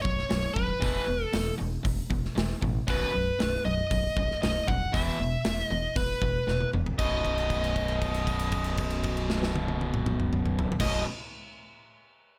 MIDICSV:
0, 0, Header, 1, 5, 480
1, 0, Start_track
1, 0, Key_signature, 5, "major"
1, 0, Tempo, 514580
1, 769, Time_signature, 4, 2, 24, 8
1, 11555, End_track
2, 0, Start_track
2, 0, Title_t, "Lead electric guitar"
2, 0, Program_c, 0, 29
2, 19, Note_on_c, 0, 73, 83
2, 479, Note_off_c, 0, 73, 0
2, 500, Note_on_c, 0, 71, 80
2, 1153, Note_off_c, 0, 71, 0
2, 1153, Note_on_c, 0, 69, 80
2, 1436, Note_off_c, 0, 69, 0
2, 2707, Note_on_c, 0, 71, 78
2, 3378, Note_off_c, 0, 71, 0
2, 3406, Note_on_c, 0, 75, 88
2, 4112, Note_off_c, 0, 75, 0
2, 4124, Note_on_c, 0, 75, 84
2, 4361, Note_on_c, 0, 78, 98
2, 4370, Note_off_c, 0, 75, 0
2, 4603, Note_on_c, 0, 76, 90
2, 4609, Note_off_c, 0, 78, 0
2, 5265, Note_off_c, 0, 76, 0
2, 5265, Note_on_c, 0, 75, 90
2, 5565, Note_on_c, 0, 71, 62
2, 5591, Note_off_c, 0, 75, 0
2, 6245, Note_off_c, 0, 71, 0
2, 6516, Note_on_c, 0, 75, 79
2, 9979, Note_off_c, 0, 75, 0
2, 10080, Note_on_c, 0, 75, 81
2, 10280, Note_off_c, 0, 75, 0
2, 11555, End_track
3, 0, Start_track
3, 0, Title_t, "Overdriven electric guitar"
3, 0, Program_c, 1, 29
3, 47, Note_on_c, 1, 35, 71
3, 53, Note_on_c, 1, 42, 83
3, 264, Note_off_c, 1, 35, 0
3, 267, Note_off_c, 1, 42, 0
3, 292, Note_on_c, 1, 35, 75
3, 295, Note_on_c, 1, 42, 78
3, 507, Note_off_c, 1, 35, 0
3, 508, Note_off_c, 1, 42, 0
3, 526, Note_on_c, 1, 35, 60
3, 534, Note_on_c, 1, 42, 69
3, 743, Note_off_c, 1, 35, 0
3, 747, Note_off_c, 1, 42, 0
3, 762, Note_on_c, 1, 40, 87
3, 767, Note_on_c, 1, 47, 85
3, 774, Note_on_c, 1, 52, 90
3, 991, Note_off_c, 1, 40, 0
3, 993, Note_off_c, 1, 47, 0
3, 996, Note_off_c, 1, 52, 0
3, 1007, Note_on_c, 1, 40, 66
3, 1011, Note_on_c, 1, 47, 77
3, 1223, Note_off_c, 1, 40, 0
3, 1225, Note_off_c, 1, 47, 0
3, 1247, Note_on_c, 1, 40, 77
3, 1249, Note_on_c, 1, 47, 78
3, 1463, Note_off_c, 1, 40, 0
3, 1464, Note_off_c, 1, 47, 0
3, 1473, Note_on_c, 1, 40, 69
3, 1479, Note_on_c, 1, 47, 71
3, 1696, Note_off_c, 1, 40, 0
3, 1699, Note_off_c, 1, 47, 0
3, 1720, Note_on_c, 1, 40, 71
3, 1723, Note_on_c, 1, 47, 81
3, 1939, Note_off_c, 1, 40, 0
3, 1941, Note_off_c, 1, 47, 0
3, 1957, Note_on_c, 1, 40, 64
3, 1960, Note_on_c, 1, 47, 75
3, 2178, Note_off_c, 1, 40, 0
3, 2179, Note_off_c, 1, 47, 0
3, 2206, Note_on_c, 1, 47, 75
3, 2208, Note_on_c, 1, 40, 75
3, 2422, Note_off_c, 1, 47, 0
3, 2423, Note_off_c, 1, 40, 0
3, 2440, Note_on_c, 1, 40, 65
3, 2444, Note_on_c, 1, 47, 73
3, 2659, Note_off_c, 1, 40, 0
3, 2661, Note_off_c, 1, 47, 0
3, 2681, Note_on_c, 1, 35, 87
3, 2688, Note_on_c, 1, 42, 89
3, 2694, Note_on_c, 1, 47, 96
3, 2909, Note_off_c, 1, 35, 0
3, 2912, Note_off_c, 1, 42, 0
3, 2915, Note_off_c, 1, 47, 0
3, 2918, Note_on_c, 1, 35, 64
3, 2924, Note_on_c, 1, 42, 71
3, 3137, Note_off_c, 1, 35, 0
3, 3140, Note_off_c, 1, 42, 0
3, 3162, Note_on_c, 1, 35, 69
3, 3165, Note_on_c, 1, 42, 81
3, 3379, Note_off_c, 1, 35, 0
3, 3381, Note_off_c, 1, 42, 0
3, 3402, Note_on_c, 1, 35, 75
3, 3406, Note_on_c, 1, 42, 72
3, 3619, Note_off_c, 1, 35, 0
3, 3621, Note_off_c, 1, 42, 0
3, 3640, Note_on_c, 1, 35, 69
3, 3644, Note_on_c, 1, 42, 79
3, 3857, Note_off_c, 1, 35, 0
3, 3860, Note_off_c, 1, 42, 0
3, 3890, Note_on_c, 1, 35, 71
3, 3890, Note_on_c, 1, 42, 69
3, 4103, Note_off_c, 1, 35, 0
3, 4103, Note_off_c, 1, 42, 0
3, 4134, Note_on_c, 1, 35, 78
3, 4135, Note_on_c, 1, 42, 76
3, 4344, Note_off_c, 1, 35, 0
3, 4345, Note_off_c, 1, 42, 0
3, 4374, Note_on_c, 1, 35, 58
3, 4381, Note_on_c, 1, 42, 65
3, 4584, Note_off_c, 1, 35, 0
3, 4588, Note_off_c, 1, 42, 0
3, 4611, Note_on_c, 1, 40, 78
3, 4617, Note_on_c, 1, 47, 92
3, 4623, Note_on_c, 1, 52, 91
3, 4832, Note_off_c, 1, 40, 0
3, 4835, Note_off_c, 1, 47, 0
3, 4838, Note_off_c, 1, 52, 0
3, 4846, Note_on_c, 1, 40, 66
3, 4847, Note_on_c, 1, 47, 77
3, 5060, Note_off_c, 1, 40, 0
3, 5060, Note_off_c, 1, 47, 0
3, 5079, Note_on_c, 1, 40, 69
3, 5085, Note_on_c, 1, 47, 73
3, 5297, Note_off_c, 1, 40, 0
3, 5299, Note_off_c, 1, 47, 0
3, 5327, Note_on_c, 1, 40, 62
3, 5329, Note_on_c, 1, 47, 71
3, 5540, Note_off_c, 1, 40, 0
3, 5541, Note_off_c, 1, 47, 0
3, 5557, Note_on_c, 1, 40, 75
3, 5559, Note_on_c, 1, 47, 81
3, 5775, Note_off_c, 1, 40, 0
3, 5776, Note_off_c, 1, 47, 0
3, 5803, Note_on_c, 1, 40, 68
3, 5805, Note_on_c, 1, 47, 73
3, 6018, Note_off_c, 1, 40, 0
3, 6019, Note_off_c, 1, 47, 0
3, 6042, Note_on_c, 1, 40, 75
3, 6042, Note_on_c, 1, 47, 78
3, 6257, Note_off_c, 1, 40, 0
3, 6258, Note_off_c, 1, 47, 0
3, 6278, Note_on_c, 1, 40, 60
3, 6284, Note_on_c, 1, 47, 70
3, 6496, Note_off_c, 1, 40, 0
3, 6498, Note_off_c, 1, 47, 0
3, 6513, Note_on_c, 1, 35, 78
3, 6535, Note_on_c, 1, 42, 86
3, 6552, Note_on_c, 1, 47, 98
3, 10015, Note_off_c, 1, 35, 0
3, 10025, Note_off_c, 1, 42, 0
3, 10034, Note_off_c, 1, 47, 0
3, 10068, Note_on_c, 1, 35, 70
3, 10092, Note_on_c, 1, 42, 91
3, 10107, Note_on_c, 1, 47, 87
3, 10289, Note_off_c, 1, 35, 0
3, 10301, Note_off_c, 1, 42, 0
3, 10308, Note_off_c, 1, 47, 0
3, 11555, End_track
4, 0, Start_track
4, 0, Title_t, "Picked electric bass"
4, 0, Program_c, 2, 34
4, 41, Note_on_c, 2, 23, 89
4, 196, Note_off_c, 2, 23, 0
4, 284, Note_on_c, 2, 23, 82
4, 439, Note_off_c, 2, 23, 0
4, 521, Note_on_c, 2, 27, 78
4, 676, Note_off_c, 2, 27, 0
4, 764, Note_on_c, 2, 28, 84
4, 918, Note_off_c, 2, 28, 0
4, 1009, Note_on_c, 2, 28, 87
4, 1162, Note_off_c, 2, 28, 0
4, 1249, Note_on_c, 2, 28, 79
4, 1402, Note_off_c, 2, 28, 0
4, 1503, Note_on_c, 2, 28, 73
4, 1650, Note_off_c, 2, 28, 0
4, 1728, Note_on_c, 2, 28, 90
4, 1880, Note_off_c, 2, 28, 0
4, 1958, Note_on_c, 2, 28, 85
4, 2113, Note_off_c, 2, 28, 0
4, 2210, Note_on_c, 2, 28, 78
4, 2361, Note_off_c, 2, 28, 0
4, 2451, Note_on_c, 2, 33, 79
4, 2602, Note_off_c, 2, 33, 0
4, 2689, Note_on_c, 2, 23, 87
4, 2841, Note_off_c, 2, 23, 0
4, 2940, Note_on_c, 2, 23, 82
4, 3088, Note_off_c, 2, 23, 0
4, 3180, Note_on_c, 2, 23, 79
4, 3328, Note_off_c, 2, 23, 0
4, 3411, Note_on_c, 2, 23, 75
4, 3561, Note_off_c, 2, 23, 0
4, 3652, Note_on_c, 2, 23, 92
4, 3802, Note_off_c, 2, 23, 0
4, 3881, Note_on_c, 2, 23, 85
4, 4034, Note_off_c, 2, 23, 0
4, 4137, Note_on_c, 2, 23, 86
4, 4285, Note_off_c, 2, 23, 0
4, 4370, Note_on_c, 2, 27, 86
4, 4521, Note_off_c, 2, 27, 0
4, 4606, Note_on_c, 2, 28, 83
4, 4758, Note_off_c, 2, 28, 0
4, 4852, Note_on_c, 2, 28, 87
4, 5002, Note_off_c, 2, 28, 0
4, 5094, Note_on_c, 2, 28, 76
4, 5243, Note_off_c, 2, 28, 0
4, 5324, Note_on_c, 2, 28, 82
4, 5476, Note_off_c, 2, 28, 0
4, 5556, Note_on_c, 2, 28, 90
4, 5711, Note_off_c, 2, 28, 0
4, 5803, Note_on_c, 2, 28, 85
4, 5955, Note_off_c, 2, 28, 0
4, 6035, Note_on_c, 2, 28, 82
4, 6190, Note_off_c, 2, 28, 0
4, 6285, Note_on_c, 2, 28, 79
4, 6437, Note_off_c, 2, 28, 0
4, 6521, Note_on_c, 2, 23, 83
4, 9981, Note_off_c, 2, 23, 0
4, 10076, Note_on_c, 2, 23, 83
4, 10278, Note_off_c, 2, 23, 0
4, 11555, End_track
5, 0, Start_track
5, 0, Title_t, "Drums"
5, 46, Note_on_c, 9, 36, 83
5, 140, Note_off_c, 9, 36, 0
5, 174, Note_on_c, 9, 38, 29
5, 267, Note_off_c, 9, 38, 0
5, 284, Note_on_c, 9, 46, 56
5, 287, Note_on_c, 9, 38, 104
5, 377, Note_off_c, 9, 46, 0
5, 380, Note_off_c, 9, 38, 0
5, 525, Note_on_c, 9, 36, 88
5, 618, Note_off_c, 9, 36, 0
5, 767, Note_on_c, 9, 36, 106
5, 775, Note_on_c, 9, 46, 54
5, 860, Note_off_c, 9, 36, 0
5, 869, Note_off_c, 9, 46, 0
5, 1243, Note_on_c, 9, 46, 63
5, 1246, Note_on_c, 9, 38, 116
5, 1337, Note_off_c, 9, 46, 0
5, 1339, Note_off_c, 9, 38, 0
5, 1725, Note_on_c, 9, 36, 106
5, 1727, Note_on_c, 9, 46, 57
5, 1818, Note_off_c, 9, 36, 0
5, 1820, Note_off_c, 9, 46, 0
5, 1964, Note_on_c, 9, 36, 77
5, 2057, Note_off_c, 9, 36, 0
5, 2098, Note_on_c, 9, 38, 32
5, 2191, Note_off_c, 9, 38, 0
5, 2215, Note_on_c, 9, 46, 52
5, 2218, Note_on_c, 9, 38, 107
5, 2308, Note_off_c, 9, 46, 0
5, 2311, Note_off_c, 9, 38, 0
5, 2448, Note_on_c, 9, 36, 85
5, 2541, Note_off_c, 9, 36, 0
5, 2687, Note_on_c, 9, 36, 114
5, 2693, Note_on_c, 9, 46, 49
5, 2780, Note_off_c, 9, 36, 0
5, 2786, Note_off_c, 9, 46, 0
5, 3171, Note_on_c, 9, 46, 54
5, 3174, Note_on_c, 9, 38, 118
5, 3264, Note_off_c, 9, 46, 0
5, 3267, Note_off_c, 9, 38, 0
5, 3648, Note_on_c, 9, 36, 109
5, 3650, Note_on_c, 9, 46, 53
5, 3741, Note_off_c, 9, 36, 0
5, 3743, Note_off_c, 9, 46, 0
5, 3886, Note_on_c, 9, 36, 80
5, 3980, Note_off_c, 9, 36, 0
5, 4021, Note_on_c, 9, 38, 30
5, 4115, Note_off_c, 9, 38, 0
5, 4134, Note_on_c, 9, 46, 53
5, 4136, Note_on_c, 9, 38, 111
5, 4227, Note_off_c, 9, 46, 0
5, 4230, Note_off_c, 9, 38, 0
5, 4367, Note_on_c, 9, 36, 89
5, 4461, Note_off_c, 9, 36, 0
5, 4608, Note_on_c, 9, 36, 104
5, 4618, Note_on_c, 9, 46, 59
5, 4701, Note_off_c, 9, 36, 0
5, 4711, Note_off_c, 9, 46, 0
5, 5080, Note_on_c, 9, 46, 59
5, 5083, Note_on_c, 9, 38, 113
5, 5174, Note_off_c, 9, 46, 0
5, 5177, Note_off_c, 9, 38, 0
5, 5561, Note_on_c, 9, 36, 105
5, 5562, Note_on_c, 9, 46, 55
5, 5654, Note_off_c, 9, 36, 0
5, 5655, Note_off_c, 9, 46, 0
5, 5799, Note_on_c, 9, 36, 81
5, 5892, Note_off_c, 9, 36, 0
5, 6042, Note_on_c, 9, 38, 53
5, 6136, Note_off_c, 9, 38, 0
5, 6162, Note_on_c, 9, 48, 60
5, 6255, Note_off_c, 9, 48, 0
5, 6282, Note_on_c, 9, 45, 83
5, 6375, Note_off_c, 9, 45, 0
5, 6403, Note_on_c, 9, 43, 79
5, 6496, Note_off_c, 9, 43, 0
5, 6516, Note_on_c, 9, 49, 81
5, 6520, Note_on_c, 9, 36, 100
5, 6610, Note_off_c, 9, 49, 0
5, 6613, Note_off_c, 9, 36, 0
5, 6759, Note_on_c, 9, 36, 58
5, 6765, Note_on_c, 9, 49, 39
5, 6853, Note_off_c, 9, 36, 0
5, 6858, Note_off_c, 9, 49, 0
5, 6881, Note_on_c, 9, 57, 41
5, 6974, Note_off_c, 9, 57, 0
5, 6997, Note_on_c, 9, 36, 66
5, 6997, Note_on_c, 9, 49, 45
5, 7090, Note_off_c, 9, 49, 0
5, 7091, Note_off_c, 9, 36, 0
5, 7125, Note_on_c, 9, 57, 40
5, 7218, Note_off_c, 9, 57, 0
5, 7237, Note_on_c, 9, 36, 56
5, 7239, Note_on_c, 9, 49, 42
5, 7331, Note_off_c, 9, 36, 0
5, 7332, Note_off_c, 9, 49, 0
5, 7351, Note_on_c, 9, 57, 46
5, 7444, Note_off_c, 9, 57, 0
5, 7477, Note_on_c, 9, 49, 49
5, 7478, Note_on_c, 9, 36, 65
5, 7571, Note_off_c, 9, 36, 0
5, 7571, Note_off_c, 9, 49, 0
5, 7595, Note_on_c, 9, 57, 47
5, 7688, Note_off_c, 9, 57, 0
5, 7714, Note_on_c, 9, 36, 65
5, 7714, Note_on_c, 9, 49, 49
5, 7807, Note_off_c, 9, 49, 0
5, 7808, Note_off_c, 9, 36, 0
5, 7829, Note_on_c, 9, 57, 47
5, 7922, Note_off_c, 9, 57, 0
5, 7944, Note_on_c, 9, 49, 51
5, 7952, Note_on_c, 9, 36, 65
5, 8037, Note_off_c, 9, 49, 0
5, 8045, Note_off_c, 9, 36, 0
5, 8060, Note_on_c, 9, 57, 47
5, 8154, Note_off_c, 9, 57, 0
5, 8184, Note_on_c, 9, 49, 55
5, 8193, Note_on_c, 9, 36, 70
5, 8277, Note_off_c, 9, 49, 0
5, 8287, Note_off_c, 9, 36, 0
5, 8305, Note_on_c, 9, 57, 52
5, 8399, Note_off_c, 9, 57, 0
5, 8427, Note_on_c, 9, 49, 50
5, 8435, Note_on_c, 9, 36, 63
5, 8520, Note_off_c, 9, 49, 0
5, 8528, Note_off_c, 9, 36, 0
5, 8552, Note_on_c, 9, 57, 53
5, 8645, Note_off_c, 9, 57, 0
5, 8673, Note_on_c, 9, 38, 91
5, 8767, Note_off_c, 9, 38, 0
5, 8797, Note_on_c, 9, 38, 86
5, 8890, Note_off_c, 9, 38, 0
5, 8913, Note_on_c, 9, 48, 102
5, 9007, Note_off_c, 9, 48, 0
5, 9033, Note_on_c, 9, 48, 84
5, 9126, Note_off_c, 9, 48, 0
5, 9153, Note_on_c, 9, 48, 87
5, 9246, Note_off_c, 9, 48, 0
5, 9269, Note_on_c, 9, 47, 82
5, 9362, Note_off_c, 9, 47, 0
5, 9387, Note_on_c, 9, 47, 96
5, 9480, Note_off_c, 9, 47, 0
5, 9512, Note_on_c, 9, 45, 93
5, 9605, Note_off_c, 9, 45, 0
5, 9633, Note_on_c, 9, 45, 99
5, 9726, Note_off_c, 9, 45, 0
5, 9753, Note_on_c, 9, 45, 94
5, 9846, Note_off_c, 9, 45, 0
5, 9876, Note_on_c, 9, 43, 104
5, 9969, Note_off_c, 9, 43, 0
5, 9998, Note_on_c, 9, 43, 98
5, 10073, Note_on_c, 9, 36, 106
5, 10073, Note_on_c, 9, 49, 99
5, 10076, Note_on_c, 9, 38, 96
5, 10091, Note_off_c, 9, 43, 0
5, 10166, Note_off_c, 9, 36, 0
5, 10166, Note_off_c, 9, 49, 0
5, 10169, Note_off_c, 9, 38, 0
5, 11555, End_track
0, 0, End_of_file